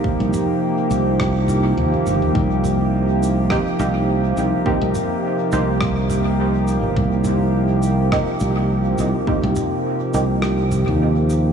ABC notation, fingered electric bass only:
X:1
M:4/4
L:1/16
Q:"Swing 16ths" 1/4=104
K:Cm
V:1 name="Fingered electric bass" clef=bass
z C,, z4 C,,6 E,, z G,,, E,, | C,,8 z2 C,,4 C,, z | z C,, z4 C,,8- C,, G,,, | C,,8 z2 C,,4 C,, z |
z C,, z4 C,,4- C,, E,,4- E,, |]